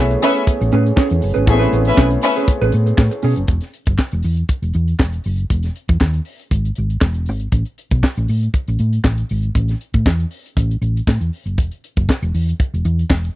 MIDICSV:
0, 0, Header, 1, 8, 480
1, 0, Start_track
1, 0, Key_signature, 4, "major"
1, 0, Tempo, 505051
1, 1401, Time_signature, 4, 2, 24, 8
1, 12694, End_track
2, 0, Start_track
2, 0, Title_t, "Violin section"
2, 0, Program_c, 0, 48
2, 218, Note_on_c, 0, 61, 103
2, 219, Note_on_c, 0, 71, 109
2, 223, Note_on_c, 0, 76, 108
2, 416, Note_off_c, 0, 61, 0
2, 417, Note_off_c, 0, 71, 0
2, 419, Note_off_c, 0, 76, 0
2, 1421, Note_on_c, 0, 61, 81
2, 1424, Note_on_c, 0, 71, 77
2, 1425, Note_on_c, 0, 76, 91
2, 1520, Note_off_c, 0, 61, 0
2, 1522, Note_off_c, 0, 71, 0
2, 1522, Note_off_c, 0, 76, 0
2, 1776, Note_on_c, 0, 61, 89
2, 1780, Note_on_c, 0, 71, 92
2, 1781, Note_on_c, 0, 76, 95
2, 1867, Note_off_c, 0, 61, 0
2, 1870, Note_off_c, 0, 71, 0
2, 1870, Note_off_c, 0, 76, 0
2, 2114, Note_on_c, 0, 71, 101
2, 2121, Note_on_c, 0, 61, 107
2, 2121, Note_on_c, 0, 76, 98
2, 2319, Note_off_c, 0, 71, 0
2, 2323, Note_off_c, 0, 61, 0
2, 2323, Note_off_c, 0, 76, 0
2, 12694, End_track
3, 0, Start_track
3, 0, Title_t, "Brass ensemble"
3, 0, Program_c, 1, 61
3, 0, Note_on_c, 1, 57, 80
3, 0, Note_on_c, 1, 59, 88
3, 0, Note_on_c, 1, 68, 77
3, 0, Note_on_c, 1, 73, 85
3, 1383, Note_off_c, 1, 57, 0
3, 1418, Note_on_c, 1, 71, 80
3, 3275, Note_off_c, 1, 73, 0
3, 3281, Note_off_c, 1, 59, 0
3, 3283, Note_off_c, 1, 68, 0
3, 3303, Note_off_c, 1, 71, 0
3, 12694, End_track
4, 0, Start_track
4, 0, Title_t, "Clean electric guitar"
4, 0, Program_c, 2, 27
4, 218, Note_on_c, 2, 61, 83
4, 229, Note_on_c, 2, 68, 102
4, 235, Note_on_c, 2, 71, 107
4, 330, Note_off_c, 2, 71, 0
4, 341, Note_off_c, 2, 68, 0
4, 366, Note_off_c, 2, 61, 0
4, 690, Note_on_c, 2, 61, 98
4, 700, Note_on_c, 2, 68, 103
4, 704, Note_on_c, 2, 71, 103
4, 810, Note_off_c, 2, 71, 0
4, 814, Note_off_c, 2, 68, 0
4, 840, Note_off_c, 2, 61, 0
4, 914, Note_on_c, 2, 61, 95
4, 927, Note_on_c, 2, 68, 92
4, 927, Note_on_c, 2, 73, 99
4, 1035, Note_off_c, 2, 73, 0
4, 1040, Note_off_c, 2, 68, 0
4, 1072, Note_off_c, 2, 61, 0
4, 1273, Note_on_c, 2, 71, 72
4, 1276, Note_on_c, 2, 68, 53
4, 1284, Note_on_c, 2, 61, 57
4, 1387, Note_off_c, 2, 61, 0
4, 1389, Note_off_c, 2, 68, 0
4, 1389, Note_off_c, 2, 71, 0
4, 1516, Note_on_c, 2, 71, 82
4, 1526, Note_on_c, 2, 68, 74
4, 1532, Note_on_c, 2, 61, 69
4, 1626, Note_off_c, 2, 61, 0
4, 1634, Note_off_c, 2, 68, 0
4, 1637, Note_on_c, 2, 61, 71
4, 1639, Note_off_c, 2, 71, 0
4, 1645, Note_on_c, 2, 68, 72
4, 1650, Note_on_c, 2, 71, 74
4, 1744, Note_off_c, 2, 71, 0
4, 1754, Note_off_c, 2, 68, 0
4, 1761, Note_off_c, 2, 61, 0
4, 1871, Note_on_c, 2, 61, 98
4, 1876, Note_on_c, 2, 68, 96
4, 1885, Note_on_c, 2, 71, 105
4, 1995, Note_off_c, 2, 71, 0
4, 2005, Note_off_c, 2, 68, 0
4, 2028, Note_off_c, 2, 61, 0
4, 2245, Note_on_c, 2, 71, 62
4, 2253, Note_on_c, 2, 68, 67
4, 2260, Note_on_c, 2, 61, 61
4, 2354, Note_off_c, 2, 71, 0
4, 2355, Note_off_c, 2, 61, 0
4, 2357, Note_off_c, 2, 68, 0
4, 2485, Note_on_c, 2, 71, 106
4, 2495, Note_on_c, 2, 68, 81
4, 2503, Note_on_c, 2, 61, 63
4, 2592, Note_off_c, 2, 61, 0
4, 2595, Note_off_c, 2, 68, 0
4, 2602, Note_off_c, 2, 71, 0
4, 3068, Note_on_c, 2, 61, 64
4, 3083, Note_on_c, 2, 68, 80
4, 3085, Note_on_c, 2, 73, 76
4, 3192, Note_off_c, 2, 73, 0
4, 3195, Note_off_c, 2, 68, 0
4, 3225, Note_off_c, 2, 61, 0
4, 12694, End_track
5, 0, Start_track
5, 0, Title_t, "Grand piano"
5, 0, Program_c, 3, 0
5, 0, Control_c, 3, 64, 127
5, 0, Note_on_c, 3, 52, 91
5, 0, Note_on_c, 3, 57, 76
5, 0, Note_on_c, 3, 59, 75
5, 0, Note_on_c, 3, 61, 79
5, 0, Note_on_c, 3, 68, 85
5, 1358, Note_off_c, 3, 52, 0
5, 1363, Note_off_c, 3, 57, 0
5, 1367, Note_off_c, 3, 59, 0
5, 1370, Note_off_c, 3, 61, 0
5, 1373, Note_off_c, 3, 68, 0
5, 1391, Note_on_c, 3, 52, 80
5, 1399, Note_on_c, 3, 57, 83
5, 1407, Note_on_c, 3, 59, 72
5, 1413, Note_on_c, 3, 60, 58
5, 1419, Note_on_c, 3, 68, 86
5, 1468, Note_off_c, 3, 60, 0
5, 1469, Note_on_c, 3, 61, 78
5, 3271, Note_off_c, 3, 52, 0
5, 3275, Note_off_c, 3, 57, 0
5, 3279, Note_off_c, 3, 59, 0
5, 3285, Note_off_c, 3, 68, 0
5, 3310, Note_off_c, 3, 61, 0
5, 3328, Control_c, 3, 64, 0
5, 12694, End_track
6, 0, Start_track
6, 0, Title_t, "Fingered electric bass"
6, 0, Program_c, 4, 33
6, 0, Note_on_c, 4, 35, 109
6, 140, Note_off_c, 4, 35, 0
6, 582, Note_on_c, 4, 33, 94
6, 658, Note_off_c, 4, 33, 0
6, 695, Note_on_c, 4, 45, 100
6, 859, Note_off_c, 4, 45, 0
6, 1057, Note_on_c, 4, 40, 90
6, 1133, Note_off_c, 4, 40, 0
6, 1172, Note_on_c, 4, 30, 85
6, 1258, Note_off_c, 4, 30, 0
6, 1294, Note_on_c, 4, 32, 76
6, 1371, Note_off_c, 4, 32, 0
6, 1402, Note_on_c, 4, 33, 98
6, 1570, Note_off_c, 4, 33, 0
6, 1643, Note_on_c, 4, 33, 94
6, 1810, Note_off_c, 4, 33, 0
6, 1881, Note_on_c, 4, 35, 98
6, 2048, Note_off_c, 4, 35, 0
6, 2487, Note_on_c, 4, 33, 85
6, 2565, Note_off_c, 4, 33, 0
6, 2602, Note_on_c, 4, 45, 104
6, 2768, Note_off_c, 4, 45, 0
6, 2835, Note_on_c, 4, 45, 87
6, 2924, Note_off_c, 4, 45, 0
6, 3077, Note_on_c, 4, 47, 91
6, 3165, Note_off_c, 4, 47, 0
6, 3204, Note_on_c, 4, 30, 80
6, 3282, Note_off_c, 4, 30, 0
6, 3311, Note_on_c, 4, 28, 92
6, 3401, Note_off_c, 4, 28, 0
6, 3678, Note_on_c, 4, 30, 75
6, 3758, Note_off_c, 4, 30, 0
6, 3923, Note_on_c, 4, 28, 91
6, 4001, Note_off_c, 4, 28, 0
6, 4033, Note_on_c, 4, 40, 84
6, 4202, Note_off_c, 4, 40, 0
6, 4393, Note_on_c, 4, 28, 70
6, 4475, Note_off_c, 4, 28, 0
6, 4511, Note_on_c, 4, 40, 87
6, 4681, Note_off_c, 4, 40, 0
6, 4746, Note_on_c, 4, 28, 68
6, 4918, Note_off_c, 4, 28, 0
6, 4996, Note_on_c, 4, 30, 75
6, 5164, Note_off_c, 4, 30, 0
6, 5229, Note_on_c, 4, 28, 84
6, 5400, Note_off_c, 4, 28, 0
6, 5603, Note_on_c, 4, 40, 90
6, 5682, Note_off_c, 4, 40, 0
6, 5712, Note_on_c, 4, 39, 82
6, 5882, Note_off_c, 4, 39, 0
6, 6193, Note_on_c, 4, 32, 92
6, 6363, Note_off_c, 4, 32, 0
6, 6444, Note_on_c, 4, 32, 85
6, 6610, Note_off_c, 4, 32, 0
6, 6670, Note_on_c, 4, 28, 81
6, 6928, Note_off_c, 4, 28, 0
6, 6928, Note_on_c, 4, 32, 84
6, 7093, Note_off_c, 4, 32, 0
6, 7149, Note_on_c, 4, 33, 83
6, 7241, Note_off_c, 4, 33, 0
6, 7524, Note_on_c, 4, 35, 83
6, 7604, Note_off_c, 4, 35, 0
6, 7769, Note_on_c, 4, 33, 92
6, 7847, Note_off_c, 4, 33, 0
6, 7881, Note_on_c, 4, 45, 87
6, 8049, Note_off_c, 4, 45, 0
6, 8251, Note_on_c, 4, 33, 84
6, 8329, Note_off_c, 4, 33, 0
6, 8359, Note_on_c, 4, 45, 83
6, 8528, Note_off_c, 4, 45, 0
6, 8595, Note_on_c, 4, 33, 70
6, 8766, Note_off_c, 4, 33, 0
6, 8846, Note_on_c, 4, 32, 90
6, 9013, Note_off_c, 4, 32, 0
6, 9080, Note_on_c, 4, 33, 95
6, 9250, Note_off_c, 4, 33, 0
6, 9451, Note_on_c, 4, 45, 88
6, 9530, Note_off_c, 4, 45, 0
6, 9562, Note_on_c, 4, 40, 91
6, 9731, Note_off_c, 4, 40, 0
6, 10049, Note_on_c, 4, 33, 86
6, 10216, Note_off_c, 4, 33, 0
6, 10278, Note_on_c, 4, 33, 81
6, 10449, Note_off_c, 4, 33, 0
6, 10528, Note_on_c, 4, 45, 87
6, 10616, Note_off_c, 4, 45, 0
6, 10650, Note_on_c, 4, 40, 76
6, 10730, Note_off_c, 4, 40, 0
6, 10887, Note_on_c, 4, 30, 64
6, 11013, Note_off_c, 4, 30, 0
6, 11013, Note_on_c, 4, 28, 100
6, 11100, Note_off_c, 4, 28, 0
6, 11379, Note_on_c, 4, 30, 77
6, 11457, Note_off_c, 4, 30, 0
6, 11617, Note_on_c, 4, 28, 94
6, 11695, Note_off_c, 4, 28, 0
6, 11732, Note_on_c, 4, 40, 75
6, 11900, Note_off_c, 4, 40, 0
6, 12104, Note_on_c, 4, 28, 74
6, 12180, Note_off_c, 4, 28, 0
6, 12213, Note_on_c, 4, 40, 93
6, 12380, Note_off_c, 4, 40, 0
6, 12453, Note_on_c, 4, 28, 78
6, 12621, Note_off_c, 4, 28, 0
6, 12694, End_track
7, 0, Start_track
7, 0, Title_t, "Muted clean electric guitar strokes"
7, 105, Note_on_c, 9, 29, 54
7, 200, Note_off_c, 9, 29, 0
7, 342, Note_on_c, 9, 29, 48
7, 437, Note_off_c, 9, 29, 0
7, 578, Note_on_c, 9, 29, 56
7, 673, Note_off_c, 9, 29, 0
7, 821, Note_on_c, 9, 29, 42
7, 916, Note_off_c, 9, 29, 0
7, 1038, Note_on_c, 9, 29, 46
7, 1133, Note_off_c, 9, 29, 0
7, 1148, Note_on_c, 9, 29, 40
7, 1243, Note_off_c, 9, 29, 0
7, 1398, Note_on_c, 9, 29, 49
7, 1493, Note_off_c, 9, 29, 0
7, 1756, Note_on_c, 9, 29, 44
7, 1851, Note_off_c, 9, 29, 0
7, 2006, Note_on_c, 9, 29, 47
7, 2101, Note_off_c, 9, 29, 0
7, 2123, Note_on_c, 9, 29, 40
7, 2218, Note_off_c, 9, 29, 0
7, 2604, Note_on_c, 9, 29, 43
7, 2699, Note_off_c, 9, 29, 0
7, 2721, Note_on_c, 9, 29, 51
7, 2816, Note_off_c, 9, 29, 0
7, 2828, Note_on_c, 9, 29, 50
7, 2923, Note_off_c, 9, 29, 0
7, 2959, Note_on_c, 9, 29, 43
7, 3054, Note_off_c, 9, 29, 0
7, 3196, Note_on_c, 9, 29, 45
7, 3291, Note_off_c, 9, 29, 0
7, 12694, End_track
8, 0, Start_track
8, 0, Title_t, "Drums"
8, 101, Note_on_c, 9, 42, 51
8, 196, Note_off_c, 9, 42, 0
8, 216, Note_on_c, 9, 46, 72
8, 311, Note_off_c, 9, 46, 0
8, 345, Note_on_c, 9, 42, 53
8, 440, Note_off_c, 9, 42, 0
8, 449, Note_on_c, 9, 36, 104
8, 457, Note_on_c, 9, 42, 78
8, 544, Note_off_c, 9, 36, 0
8, 552, Note_off_c, 9, 42, 0
8, 583, Note_on_c, 9, 42, 44
8, 678, Note_off_c, 9, 42, 0
8, 683, Note_on_c, 9, 42, 58
8, 778, Note_off_c, 9, 42, 0
8, 820, Note_on_c, 9, 42, 47
8, 915, Note_off_c, 9, 42, 0
8, 922, Note_on_c, 9, 36, 113
8, 926, Note_on_c, 9, 38, 110
8, 928, Note_on_c, 9, 39, 90
8, 1017, Note_off_c, 9, 36, 0
8, 1021, Note_off_c, 9, 38, 0
8, 1023, Note_off_c, 9, 39, 0
8, 1045, Note_on_c, 9, 42, 50
8, 1140, Note_off_c, 9, 42, 0
8, 1160, Note_on_c, 9, 46, 69
8, 1255, Note_off_c, 9, 46, 0
8, 1292, Note_on_c, 9, 42, 50
8, 1387, Note_off_c, 9, 42, 0
8, 1400, Note_on_c, 9, 36, 113
8, 1400, Note_on_c, 9, 42, 87
8, 1495, Note_off_c, 9, 36, 0
8, 1495, Note_off_c, 9, 42, 0
8, 1520, Note_on_c, 9, 42, 43
8, 1533, Note_on_c, 9, 38, 41
8, 1615, Note_off_c, 9, 42, 0
8, 1628, Note_off_c, 9, 38, 0
8, 1642, Note_on_c, 9, 42, 65
8, 1737, Note_off_c, 9, 42, 0
8, 1759, Note_on_c, 9, 42, 46
8, 1854, Note_off_c, 9, 42, 0
8, 1877, Note_on_c, 9, 36, 102
8, 1882, Note_on_c, 9, 38, 127
8, 1884, Note_on_c, 9, 39, 95
8, 1972, Note_off_c, 9, 36, 0
8, 1977, Note_off_c, 9, 38, 0
8, 1979, Note_off_c, 9, 39, 0
8, 1999, Note_on_c, 9, 42, 46
8, 2094, Note_off_c, 9, 42, 0
8, 2106, Note_on_c, 9, 46, 80
8, 2201, Note_off_c, 9, 46, 0
8, 2245, Note_on_c, 9, 42, 57
8, 2340, Note_off_c, 9, 42, 0
8, 2355, Note_on_c, 9, 36, 111
8, 2357, Note_on_c, 9, 42, 78
8, 2451, Note_off_c, 9, 36, 0
8, 2452, Note_off_c, 9, 42, 0
8, 2485, Note_on_c, 9, 42, 39
8, 2580, Note_off_c, 9, 42, 0
8, 2586, Note_on_c, 9, 42, 67
8, 2681, Note_off_c, 9, 42, 0
8, 2725, Note_on_c, 9, 42, 48
8, 2820, Note_off_c, 9, 42, 0
8, 2831, Note_on_c, 9, 36, 117
8, 2833, Note_on_c, 9, 38, 127
8, 2835, Note_on_c, 9, 39, 97
8, 2926, Note_off_c, 9, 36, 0
8, 2928, Note_off_c, 9, 38, 0
8, 2930, Note_off_c, 9, 39, 0
8, 2960, Note_on_c, 9, 42, 53
8, 3055, Note_off_c, 9, 42, 0
8, 3064, Note_on_c, 9, 46, 62
8, 3160, Note_off_c, 9, 46, 0
8, 3195, Note_on_c, 9, 42, 50
8, 3290, Note_off_c, 9, 42, 0
8, 3303, Note_on_c, 9, 42, 67
8, 3309, Note_on_c, 9, 36, 94
8, 3398, Note_off_c, 9, 42, 0
8, 3404, Note_off_c, 9, 36, 0
8, 3428, Note_on_c, 9, 42, 41
8, 3440, Note_on_c, 9, 38, 32
8, 3523, Note_off_c, 9, 42, 0
8, 3535, Note_off_c, 9, 38, 0
8, 3550, Note_on_c, 9, 42, 51
8, 3645, Note_off_c, 9, 42, 0
8, 3666, Note_on_c, 9, 42, 47
8, 3677, Note_on_c, 9, 36, 86
8, 3761, Note_off_c, 9, 42, 0
8, 3772, Note_off_c, 9, 36, 0
8, 3787, Note_on_c, 9, 36, 90
8, 3787, Note_on_c, 9, 38, 92
8, 3788, Note_on_c, 9, 39, 92
8, 3882, Note_off_c, 9, 36, 0
8, 3882, Note_off_c, 9, 38, 0
8, 3883, Note_off_c, 9, 39, 0
8, 3912, Note_on_c, 9, 42, 40
8, 4007, Note_off_c, 9, 42, 0
8, 4016, Note_on_c, 9, 46, 65
8, 4111, Note_off_c, 9, 46, 0
8, 4154, Note_on_c, 9, 42, 44
8, 4249, Note_off_c, 9, 42, 0
8, 4264, Note_on_c, 9, 42, 66
8, 4267, Note_on_c, 9, 36, 91
8, 4359, Note_off_c, 9, 42, 0
8, 4362, Note_off_c, 9, 36, 0
8, 4397, Note_on_c, 9, 42, 38
8, 4492, Note_off_c, 9, 42, 0
8, 4501, Note_on_c, 9, 42, 50
8, 4596, Note_off_c, 9, 42, 0
8, 4636, Note_on_c, 9, 42, 43
8, 4731, Note_off_c, 9, 42, 0
8, 4746, Note_on_c, 9, 36, 104
8, 4748, Note_on_c, 9, 38, 107
8, 4749, Note_on_c, 9, 39, 84
8, 4841, Note_off_c, 9, 36, 0
8, 4843, Note_off_c, 9, 38, 0
8, 4844, Note_off_c, 9, 39, 0
8, 4872, Note_on_c, 9, 42, 45
8, 4967, Note_off_c, 9, 42, 0
8, 4979, Note_on_c, 9, 46, 58
8, 5074, Note_off_c, 9, 46, 0
8, 5114, Note_on_c, 9, 42, 42
8, 5209, Note_off_c, 9, 42, 0
8, 5230, Note_on_c, 9, 36, 87
8, 5231, Note_on_c, 9, 42, 67
8, 5325, Note_off_c, 9, 36, 0
8, 5326, Note_off_c, 9, 42, 0
8, 5349, Note_on_c, 9, 42, 42
8, 5361, Note_on_c, 9, 38, 31
8, 5444, Note_off_c, 9, 42, 0
8, 5456, Note_off_c, 9, 38, 0
8, 5472, Note_on_c, 9, 42, 52
8, 5567, Note_off_c, 9, 42, 0
8, 5593, Note_on_c, 9, 42, 42
8, 5599, Note_on_c, 9, 36, 82
8, 5688, Note_off_c, 9, 42, 0
8, 5694, Note_off_c, 9, 36, 0
8, 5708, Note_on_c, 9, 36, 89
8, 5710, Note_on_c, 9, 38, 104
8, 5712, Note_on_c, 9, 39, 83
8, 5804, Note_off_c, 9, 36, 0
8, 5806, Note_off_c, 9, 38, 0
8, 5807, Note_off_c, 9, 39, 0
8, 5830, Note_on_c, 9, 42, 38
8, 5925, Note_off_c, 9, 42, 0
8, 5940, Note_on_c, 9, 46, 71
8, 6035, Note_off_c, 9, 46, 0
8, 6079, Note_on_c, 9, 42, 45
8, 6174, Note_off_c, 9, 42, 0
8, 6188, Note_on_c, 9, 42, 68
8, 6189, Note_on_c, 9, 36, 91
8, 6283, Note_off_c, 9, 42, 0
8, 6284, Note_off_c, 9, 36, 0
8, 6320, Note_on_c, 9, 42, 37
8, 6415, Note_off_c, 9, 42, 0
8, 6419, Note_on_c, 9, 42, 55
8, 6514, Note_off_c, 9, 42, 0
8, 6558, Note_on_c, 9, 42, 44
8, 6653, Note_off_c, 9, 42, 0
8, 6665, Note_on_c, 9, 38, 94
8, 6666, Note_on_c, 9, 36, 112
8, 6667, Note_on_c, 9, 39, 77
8, 6760, Note_off_c, 9, 38, 0
8, 6761, Note_off_c, 9, 36, 0
8, 6762, Note_off_c, 9, 39, 0
8, 6789, Note_on_c, 9, 42, 41
8, 6884, Note_off_c, 9, 42, 0
8, 6900, Note_on_c, 9, 46, 57
8, 6995, Note_off_c, 9, 46, 0
8, 7030, Note_on_c, 9, 42, 39
8, 7125, Note_off_c, 9, 42, 0
8, 7146, Note_on_c, 9, 42, 70
8, 7149, Note_on_c, 9, 36, 88
8, 7241, Note_off_c, 9, 42, 0
8, 7244, Note_off_c, 9, 36, 0
8, 7273, Note_on_c, 9, 42, 37
8, 7368, Note_off_c, 9, 42, 0
8, 7394, Note_on_c, 9, 42, 56
8, 7489, Note_off_c, 9, 42, 0
8, 7514, Note_on_c, 9, 42, 48
8, 7521, Note_on_c, 9, 36, 83
8, 7609, Note_off_c, 9, 42, 0
8, 7616, Note_off_c, 9, 36, 0
8, 7632, Note_on_c, 9, 36, 93
8, 7639, Note_on_c, 9, 38, 115
8, 7640, Note_on_c, 9, 39, 83
8, 7727, Note_off_c, 9, 36, 0
8, 7734, Note_off_c, 9, 38, 0
8, 7735, Note_off_c, 9, 39, 0
8, 7760, Note_on_c, 9, 42, 39
8, 7855, Note_off_c, 9, 42, 0
8, 7872, Note_on_c, 9, 46, 61
8, 7967, Note_off_c, 9, 46, 0
8, 8010, Note_on_c, 9, 42, 47
8, 8105, Note_off_c, 9, 42, 0
8, 8115, Note_on_c, 9, 36, 86
8, 8116, Note_on_c, 9, 42, 65
8, 8210, Note_off_c, 9, 36, 0
8, 8211, Note_off_c, 9, 42, 0
8, 8246, Note_on_c, 9, 42, 40
8, 8341, Note_off_c, 9, 42, 0
8, 8352, Note_on_c, 9, 42, 48
8, 8447, Note_off_c, 9, 42, 0
8, 8485, Note_on_c, 9, 42, 43
8, 8580, Note_off_c, 9, 42, 0
8, 8593, Note_on_c, 9, 36, 95
8, 8596, Note_on_c, 9, 38, 112
8, 8597, Note_on_c, 9, 39, 91
8, 8688, Note_off_c, 9, 36, 0
8, 8691, Note_off_c, 9, 38, 0
8, 8692, Note_off_c, 9, 39, 0
8, 8721, Note_on_c, 9, 42, 48
8, 8816, Note_off_c, 9, 42, 0
8, 8832, Note_on_c, 9, 46, 54
8, 8927, Note_off_c, 9, 46, 0
8, 8963, Note_on_c, 9, 42, 42
8, 9058, Note_off_c, 9, 42, 0
8, 9078, Note_on_c, 9, 36, 89
8, 9082, Note_on_c, 9, 42, 73
8, 9173, Note_off_c, 9, 36, 0
8, 9177, Note_off_c, 9, 42, 0
8, 9203, Note_on_c, 9, 42, 40
8, 9215, Note_on_c, 9, 38, 33
8, 9298, Note_off_c, 9, 42, 0
8, 9310, Note_off_c, 9, 38, 0
8, 9322, Note_on_c, 9, 42, 55
8, 9417, Note_off_c, 9, 42, 0
8, 9444, Note_on_c, 9, 42, 47
8, 9448, Note_on_c, 9, 36, 78
8, 9539, Note_off_c, 9, 42, 0
8, 9543, Note_off_c, 9, 36, 0
8, 9559, Note_on_c, 9, 36, 94
8, 9568, Note_on_c, 9, 38, 116
8, 9569, Note_on_c, 9, 39, 81
8, 9654, Note_off_c, 9, 36, 0
8, 9663, Note_off_c, 9, 38, 0
8, 9664, Note_off_c, 9, 39, 0
8, 9692, Note_on_c, 9, 42, 41
8, 9787, Note_off_c, 9, 42, 0
8, 9797, Note_on_c, 9, 46, 67
8, 9892, Note_off_c, 9, 46, 0
8, 9939, Note_on_c, 9, 42, 45
8, 10034, Note_off_c, 9, 42, 0
8, 10043, Note_on_c, 9, 36, 93
8, 10051, Note_on_c, 9, 42, 68
8, 10138, Note_off_c, 9, 36, 0
8, 10146, Note_off_c, 9, 42, 0
8, 10180, Note_on_c, 9, 42, 35
8, 10275, Note_off_c, 9, 42, 0
8, 10284, Note_on_c, 9, 42, 51
8, 10379, Note_off_c, 9, 42, 0
8, 10425, Note_on_c, 9, 42, 46
8, 10521, Note_off_c, 9, 42, 0
8, 10524, Note_on_c, 9, 36, 99
8, 10535, Note_on_c, 9, 38, 104
8, 10536, Note_on_c, 9, 39, 83
8, 10619, Note_off_c, 9, 36, 0
8, 10630, Note_off_c, 9, 38, 0
8, 10631, Note_off_c, 9, 39, 0
8, 10655, Note_on_c, 9, 42, 46
8, 10750, Note_off_c, 9, 42, 0
8, 10768, Note_on_c, 9, 46, 56
8, 10863, Note_off_c, 9, 46, 0
8, 10898, Note_on_c, 9, 42, 44
8, 10993, Note_off_c, 9, 42, 0
8, 11006, Note_on_c, 9, 36, 94
8, 11011, Note_on_c, 9, 42, 66
8, 11101, Note_off_c, 9, 36, 0
8, 11106, Note_off_c, 9, 42, 0
8, 11134, Note_on_c, 9, 42, 39
8, 11229, Note_off_c, 9, 42, 0
8, 11253, Note_on_c, 9, 42, 53
8, 11348, Note_off_c, 9, 42, 0
8, 11372, Note_on_c, 9, 42, 42
8, 11377, Note_on_c, 9, 36, 87
8, 11467, Note_off_c, 9, 42, 0
8, 11472, Note_off_c, 9, 36, 0
8, 11488, Note_on_c, 9, 36, 98
8, 11499, Note_on_c, 9, 38, 102
8, 11501, Note_on_c, 9, 39, 90
8, 11583, Note_off_c, 9, 36, 0
8, 11594, Note_off_c, 9, 38, 0
8, 11596, Note_off_c, 9, 39, 0
8, 11621, Note_on_c, 9, 42, 41
8, 11716, Note_off_c, 9, 42, 0
8, 11733, Note_on_c, 9, 46, 72
8, 11828, Note_off_c, 9, 46, 0
8, 11868, Note_on_c, 9, 42, 48
8, 11963, Note_off_c, 9, 42, 0
8, 11973, Note_on_c, 9, 36, 100
8, 11981, Note_on_c, 9, 42, 67
8, 12068, Note_off_c, 9, 36, 0
8, 12076, Note_off_c, 9, 42, 0
8, 12112, Note_on_c, 9, 42, 39
8, 12207, Note_off_c, 9, 42, 0
8, 12212, Note_on_c, 9, 42, 57
8, 12307, Note_off_c, 9, 42, 0
8, 12348, Note_on_c, 9, 42, 45
8, 12443, Note_off_c, 9, 42, 0
8, 12450, Note_on_c, 9, 36, 98
8, 12454, Note_on_c, 9, 38, 113
8, 12456, Note_on_c, 9, 39, 83
8, 12545, Note_off_c, 9, 36, 0
8, 12549, Note_off_c, 9, 38, 0
8, 12551, Note_off_c, 9, 39, 0
8, 12584, Note_on_c, 9, 42, 47
8, 12679, Note_off_c, 9, 42, 0
8, 12694, End_track
0, 0, End_of_file